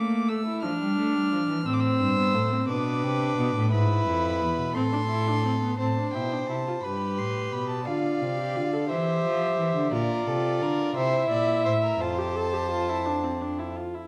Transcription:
Already playing: A3 A#3 D6
0.29 A3 E6
0.46 E4
0.63 F3 D4 F6
0.80 G3
0.97 A3
1.15 G3
1.32 F3
1.49 E3
1.65 A2 C4 C5 E6
1.73 D6
1.80 E6
2.00 G2
2.18 B3
2.34 A2 A3
2.52 C4
2.68 B2 D4 B4 D6
3.03 C3
3.37 B2
3.55 A2
3.71 G#2 E4 B4 B5
4.07 F2
4.41 E2
4.58 B2
4.75 A2 C4 A4 C6
4.92 D4
5.10 E4
5.28 D4
5.45 C4
5.62 B3
5.79 A2 C4 C5 A5
5.97 D4
6.14 B2 E4 G5
6.32 D4
6.49 C3 E4 A5
6.67 F4
6.83 G2 G4 B4 B5
7.18 A2 C6
7.53 B2 B5
7.69 A5
7.85 D3 F4 D5 F5
8.21 C3
8.39 G4
8.55 D3 F4
8.73 A4
8.89 E3 G4 C5 E5
9.24 F3
9.58 E3
9.76 D3
9.92 A#2 F4 A#4 D5
10.27 C3 A4
10.61 D3 A#4
10.96 C3 E4 C5 E5
11.30 A#2 D5
11.65 A2 C5
11.83 A#4
12.01 F2 F4 C5 A5
12.19 G4
12.36 A4
12.53 G4
12.71 F4
12.89 E4
13.06 D4
13.23 C4
13.41 D4
13.58 E4
13.76 F4
13.94 E4

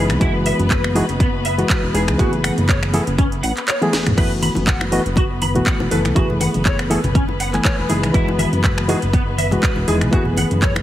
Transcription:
Already playing: F#1 E3 G#3 B3 D#4 G#4 B4
0.10 C#2, finger snap, closed hi-hat
0.20 F#1 E3 G#3 E4 F#4, kick, closed hi-hat
0.46 E5, open hi-hat
0.59 F#1, closed hi-hat
0.71 B4, kick, clap, closed hi-hat
0.84 finger snap
0.95 E3 G#3 D#4 F#4 G#4, open hi-hat
1.09 F#1, closed hi-hat
1.20 B3, kick, closed hi-hat
1.45 E5, open hi-hat
1.58 E3 G#3 F#4, closed hi-hat
1.70 B4, kick, clap, closed hi-hat
1.83 E1
1.94 E1 E3 G#3 D#4 G#4, open hi-hat
2.08 C#2, finger snap, closed hi-hat
2.18 F#1 E3 A3 B3 F#4 G#4, kick, closed hi-hat
2.33 closed hi-hat
2.44 F#5, finger snap, open hi-hat
2.58 F#1, closed hi-hat
2.69 C#5, kick, clap, closed hi-hat
2.83 finger snap, closed hi-hat
2.93 E3 A3 B3 G#4 A4, open hi-hat
3.07 F#1, closed hi-hat
3.18 C#4, kick, closed hi-hat
3.32 closed hi-hat
3.43 A1 F#5, open hi-hat
3.57 clap, closed hi-hat
3.68 C#5, clap, closed hi-hat
3.81 E3 A3 B3 G#4, closed hi-hat, high tom
3.93 E1 B4, snare, open hi-hat
4.07 E1, finger snap, closed hi-hat, mid tom
4.17 F#1 E3 A3 B3 F#4 B4, kick, closed hi-hat, crash, high bongo
4.42 B5, open hi-hat, high conga
4.55 F#1, closed hi-hat, high bongo
4.67 F#5, kick, clap, closed hi-hat
4.81 finger snap, high bongo
4.92 E3 A3 B3 F#4 D#5, open hi-hat
5.06 F#1, closed hi-hat
5.16 F#4, kick, closed hi-hat, high bongo
5.42 B5, open hi-hat, high bongo, high conga
5.55 E3 A3 B3 F#4, closed hi-hat, low conga
5.66 F#5, kick, clap, closed hi-hat
5.80 E1, high bongo
5.91 F#1 E3 A3 B3 A4 B4, open hi-hat, high conga
6.05 C#2, finger snap, closed hi-hat, high bongo
6.15 F#1 E3 A3 B3 F#4 G#4, kick, closed hi-hat
6.30 low conga
6.40 F#5, open hi-hat, high bongo, high conga
6.54 F#1, closed hi-hat
6.65 C#5, kick, clap, closed hi-hat, high bongo
6.79 finger snap, closed hi-hat
6.90 E3 A3 B3 G#4 A4, open hi-hat
7.04 F#1, closed hi-hat, high bongo, low conga
7.15 C#4, kick, closed hi-hat, high conga
7.28 high bongo
7.40 F#5, open hi-hat
7.53 E3 A3 B3 G#5, clap, closed hi-hat
7.64 C#5, kick, clap, closed hi-hat, high bongo
7.78 E1
7.89 F#1 E3 G#3 D#4 G#4, open hi-hat, high bongo
8.03 C#2, finger snap, closed hi-hat, high conga
8.14 F#1 E3 G#3 E4 F#4, kick, closed hi-hat
8.28 high bongo
8.39 E5, open hi-hat, high conga
8.52 F#1, closed hi-hat, high bongo
8.64 B4, kick, clap, closed hi-hat
8.78 finger snap
8.88 E3 G#3 D#4 F#4 G#4, open hi-hat, high bongo
9.02 F#1, closed hi-hat
9.13 B3, kick, closed hi-hat, high bongo
9.38 E5, open hi-hat, high conga
9.51 E3 G#3 F#4, closed hi-hat, high bongo, low conga
9.63 B4, kick, clap, closed hi-hat
9.76 E1, high bongo
9.88 E1 E3 G#3 D#4 G#4, open hi-hat, high conga
10.01 C#2, finger snap, closed hi-hat
10.12 F#1 E3 A3 B3 F#4 G#4, kick, closed hi-hat, high bongo
10.25 low conga
10.37 F#5, open hi-hat, high bongo, high conga
10.51 F#1, closed hi-hat
10.62 C#5, kick, clap, closed hi-hat
10.76 finger snap, closed hi-hat, high bongo

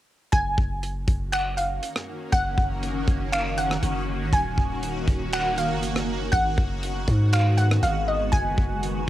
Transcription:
0.32 F#1 D#3 A#3 C#4 F#4 G#5, kick, closed hi-hat
0.58 F#1, kick
0.83 closed hi-hat
1.08 F#1, kick, closed hi-hat
1.32 F#5, finger snap, closed hi-hat
1.57 F5, closed hi-hat
1.83 closed hi-hat
1.96 cross-stick
2.32 F#1 F#5, kick, closed hi-hat
2.58 F#1, kick
2.83 closed hi-hat
3.08 F#1, kick, closed hi-hat
3.33 F5, finger snap, closed hi-hat
3.58 F#5, closed hi-hat
3.71 cross-stick
3.83 F#1, closed hi-hat
4.20 G#1
4.33 D#1 A#3 G#5, kick, closed hi-hat
4.58 D#1, kick
4.83 closed hi-hat
5.08 D#1, kick, closed hi-hat
5.33 F#5, finger snap, closed hi-hat
5.58 F5, closed hi-hat
5.70 F#1
5.83 closed hi-hat
5.96 cross-stick
6.32 G#1 D#3 G#3 B3 F#5, kick, closed hi-hat
6.58 F#1, kick
6.83 closed hi-hat
7.08 G#2, kick, closed hi-hat
7.33 F5, finger snap, closed hi-hat
7.58 F#5, closed hi-hat
7.71 cross-stick
7.83 G#1 F5, closed hi-hat
8.08 D#5
8.32 F#1 A#3 C#4 G#5, kick, closed hi-hat
8.58 F#1, kick
8.83 closed hi-hat

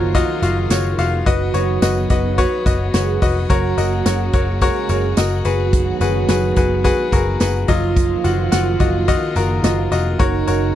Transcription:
Already playing: F#1 D#3 F3 F#3 A#3 F4 F#4 A#4 C#5 D#5
0.15 F4 F#4 D#5, kick, closed hi-hat, tambourine
0.42 F#1 F4 F#4 F5, closed hi-hat, tambourine
0.70 F#1 F4 F#4 C#5, snare, closed hi-hat, tambourine
0.98 F1 F4 F#4 F5, closed hi-hat, tambourine
1.26 F#1 F#3 B3 F#4 B4 D#5, kick, closed hi-hat
1.54 F#1 F#4 B4 C#5, closed hi-hat, tambourine
1.82 F#1 F#4 B4 D#5, snare, closed hi-hat, tambourine
2.10 F#1 F#4 B4 D#5, kick, snare, closed hi-hat, tambourine
2.38 F#4 B4 C#5, kick, closed hi-hat, tambourine
2.66 F#1 F#4 B4 D#5, kick, closed hi-hat, tambourine
2.94 F#1 G#3 F#4 G#4 B4 C#5, snare, closed hi-hat, tambourine
3.22 F1 F#4 B4 D#5, kick, open hi-hat, tambourine
3.50 F#1 C#3 F#3 A#3 F#4 A#4 C#5, kick, closed hi-hat, tambourine
3.78 F#1 F#4 A#4 D#5, closed hi-hat, tambourine
4.06 F#1 F#4 A#4 C#5, snare, closed hi-hat, tambourine
4.33 F#1 F#4 A#4 C#5, kick, closed hi-hat
4.61 G#3 F#4 G#4 A#4 C#5, kick, closed hi-hat, tambourine
4.89 F#1 F#4 A#4 C#5, closed hi-hat, tambourine
5.17 F#1 F#4 A#4 D#5, snare, closed hi-hat, tambourine
5.45 F#1 D#3 F#3 G#3 B3 F#4 G#4 B4, closed hi-hat, tambourine
5.73 kick, closed hi-hat
6.01 F#1 F#4 G#4 B4, closed hi-hat, tambourine
6.28 F#1 F#4 G#4 B4, snare, closed hi-hat, tambourine
6.56 F#1 F#4 G#4 B4, kick, snare, closed hi-hat, tambourine
6.84 F#4 G#4 B4, kick, closed hi-hat, tambourine
7.12 F#1 F#4 G#4 A#4, kick, closed hi-hat, tambourine
7.40 F#1 F#4 G#4 B4, snare, closed hi-hat, tambourine
7.68 F#1 D#3 F3 F#3 A#3 F4 D#5, kick, closed hi-hat, tambourine
7.96 kick, closed hi-hat, tambourine
8.24 F#1 F4 F#4 F#5, closed hi-hat, tambourine
8.52 F#1 F4 F#4 F#5, snare, closed hi-hat, tambourine
8.80 F#1 F4 F#4 D#5, kick, closed hi-hat, tambourine
9.08 F4 F#4 D#5, kick, closed hi-hat, tambourine
9.36 F#1 F4 F#4 A#4, closed hi-hat, tambourine
9.64 F#1 F3 F4 F#4 D#5, snare, closed hi-hat, tambourine
9.91 F1 F4 F#4 D#5, closed hi-hat, tambourine
10.19 F#1 C#3 D#3 D#4 F#4 A#4 C#5, kick, closed hi-hat
10.47 F#1 F#4 A#4 C#5, closed hi-hat, tambourine

